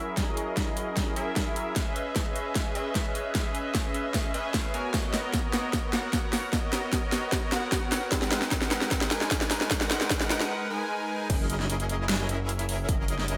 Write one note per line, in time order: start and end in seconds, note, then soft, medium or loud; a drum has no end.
0.00 0.15 F#3 medium
0.00 0.15 C#4 medium
0.00 0.15 E4 medium
0.00 0.15 G#4 medium
0.00 0.15 A#4 medium
0.00 0.15 E5 loud
0.17 1.14 F#3 medium
0.17 1.14 C#4 medium
0.17 1.14 E4 medium
0.17 1.14 G#4 medium
0.17 1.14 A#4 medium
0.17 1.14 D#5 loud
0.17 kick loud
0.17 snare medium
0.17 closed hi-hat medium
0.37 closed hi-hat medium
0.57 kick loud
0.57 snare medium
0.57 closed hi-hat medium
0.77 closed hi-hat medium
0.97 kick medium
0.97 snare medium
0.97 closed hi-hat medium
1.16 1.74 F#3 medium
1.16 1.74 C#4 medium
1.16 1.74 E4 medium
1.16 1.74 G#4 medium
1.16 1.74 A#4 medium
1.16 1.74 E5 loud
1.16 closed hi-hat medium
1.36 kick medium
1.36 snare medium
1.36 closed hi-hat medium
1.56 closed hi-hat medium
1.76 2.73 C#4 medium
1.76 2.73 G#4 medium
1.76 2.73 B4 medium
1.76 2.73 D#5 medium
1.76 2.73 E5 loud
1.76 kick loud
1.76 snare medium
1.76 closed hi-hat medium
1.96 closed hi-hat medium
2.16 kick loud
2.16 snare medium
2.16 closed hi-hat medium
2.36 closed hi-hat medium
2.55 kick loud
2.55 snare medium
2.55 closed hi-hat medium
2.75 3.32 C#4 medium
2.75 3.33 G#4 medium
2.75 3.33 B4 medium
2.75 3.32 D#5 medium
2.75 3.33 E5 loud
2.75 closed hi-hat medium
2.95 kick medium
2.95 snare medium
2.95 closed hi-hat medium
3.15 closed hi-hat medium
3.35 4.32 C#4 medium
3.35 4.32 G#4 medium
3.35 4.32 B4 medium
3.35 4.32 D#5 medium
3.35 4.32 E5 loud
3.35 kick loud
3.35 snare medium
3.35 closed hi-hat medium
3.55 closed hi-hat medium
3.75 kick loud
3.75 snare medium
3.75 closed hi-hat medium
3.94 closed hi-hat medium
4.14 kick medium
4.14 snare medium
4.14 closed hi-hat medium
4.34 4.72 C#4 loud
4.34 4.72 G#4 medium
4.34 4.72 B4 medium
4.34 4.72 D#5 medium
4.34 4.72 E5 loud
4.34 closed hi-hat medium
4.54 kick medium
4.54 snare medium
4.54 closed hi-hat medium
4.74 4.91 B3 medium
4.74 4.91 F#4 medium
4.74 4.92 A#4 medium
4.74 4.91 C#5 medium
4.74 4.91 G#5 loud
4.74 closed hi-hat medium
4.94 5.91 B3 medium
4.94 5.91 F#4 medium
4.94 5.91 A#4 medium
4.94 5.91 C#5 medium
4.94 5.91 D#5 loud
4.94 kick loud
4.94 snare medium
4.94 closed hi-hat medium
5.14 snare medium
5.14 closed hi-hat medium
5.33 kick loud
5.33 snare medium
5.33 closed hi-hat medium
5.53 snare medium
5.53 closed hi-hat medium
5.73 kick loud
5.73 snare medium
5.73 closed hi-hat medium
5.93 6.50 B3 medium
5.93 6.50 F#4 medium
5.93 6.50 A#4 medium
5.93 6.50 C#5 medium
5.93 6.50 F#5 loud
5.93 snare medium
5.93 closed hi-hat medium
6.13 kick loud
6.13 snare medium
6.13 closed hi-hat medium
6.33 snare medium
6.33 open hi-hat medium
6.53 7.50 B3 medium
6.53 7.50 F#4 medium
6.53 7.50 A#4 medium
6.53 7.50 C#5 medium
6.53 7.50 D#5 loud
6.53 kick loud
6.53 snare medium
6.53 closed hi-hat medium
6.73 snare medium
6.73 closed hi-hat medium
6.92 kick loud
6.92 snare medium
6.92 closed hi-hat medium
7.12 snare medium
7.12 closed hi-hat medium
7.32 kick loud
7.32 snare medium
7.32 closed hi-hat medium
7.52 8.09 B3 medium
7.52 8.09 F#4 medium
7.52 8.09 A#4 medium
7.52 8.09 C#5 medium
7.52 8.09 F#5 loud
7.52 snare medium
7.52 closed hi-hat medium
7.72 kick medium
7.72 snare medium
7.72 closed hi-hat medium
7.92 snare medium
7.92 open hi-hat medium
8.12 9.09 G#3 medium
8.12 9.09 D#4 medium
8.12 9.09 A#4 medium
8.12 9.09 B4 medium
8.12 9.09 F#5 loud
8.12 kick medium
8.12 snare medium
8.12 closed hi-hat medium
8.22 snare medium
8.32 snare loud
8.32 closed hi-hat medium
8.42 snare medium
8.51 kick loud
8.51 snare medium
8.51 closed hi-hat medium
8.62 snare medium
8.71 snare medium
8.71 closed hi-hat medium
8.81 snare medium
8.91 kick loud
8.91 snare medium
8.91 closed hi-hat medium
9.01 snare medium
9.11 9.68 G#3 medium
9.11 9.68 D#4 medium
9.11 9.68 A#4 medium
9.11 9.68 B4 medium
9.11 9.68 G#5 loud
9.11 snare loud
9.11 closed hi-hat medium
9.21 snare medium
9.31 kick medium
9.31 snare loud
9.31 closed hi-hat medium
9.41 snare medium
9.51 snare loud
9.51 open hi-hat loud
9.61 snare medium
9.71 10.68 G#3 medium
9.71 10.68 D#4 medium
9.71 10.68 A#4 medium
9.71 10.68 B4 medium
9.71 10.68 F#5 loud
9.71 kick loud
9.71 snare loud
9.71 closed hi-hat medium
9.81 snare medium
9.91 snare loud
9.91 closed hi-hat medium
10.01 snare medium
10.10 kick loud
10.10 snare loud
10.10 closed hi-hat medium
10.21 snare medium
10.30 snare loud
10.30 closed hi-hat medium
10.40 snare medium
10.70 11.27 G#3 medium
10.70 11.27 D#4 medium
10.70 11.27 A#4 medium
10.70 11.27 B4 medium
10.70 11.27 G#5 loud
11.30 12.27 F#1 loud
11.30 12.27 F#3 loud
11.30 12.27 C#4 medium
11.30 12.27 E4 medium
11.30 12.27 G#4 medium
11.30 12.27 A#4 medium
11.30 12.27 D#5 loud
11.30 kick loud
11.30 closed hi-hat medium
11.30 crash loud
11.50 closed hi-hat medium
11.60 snare soft
11.70 closed hi-hat medium
11.80 closed hi-hat medium
11.89 closed hi-hat medium
12.09 snare loud
12.09 closed hi-hat medium
12.29 12.87 F#1 loud
12.29 12.86 F#3 medium
12.29 12.86 C#4 medium
12.29 12.86 E4 medium
12.29 12.86 G#4 medium
12.29 12.86 A#4 medium
12.29 12.86 E5 medium
12.29 closed hi-hat medium
12.49 closed hi-hat medium
12.59 closed hi-hat medium
12.69 open hi-hat medium
12.88 13.38 F#1 loud
12.88 13.38 F#3 medium
12.88 13.38 C#4 medium
12.88 13.38 E4 medium
12.88 13.38 G#4 medium
12.88 13.38 A#4 medium
12.88 13.38 D#5 loud
12.88 kick loud
12.88 closed hi-hat medium
13.08 closed hi-hat medium
13.19 snare soft
13.28 closed hi-hat medium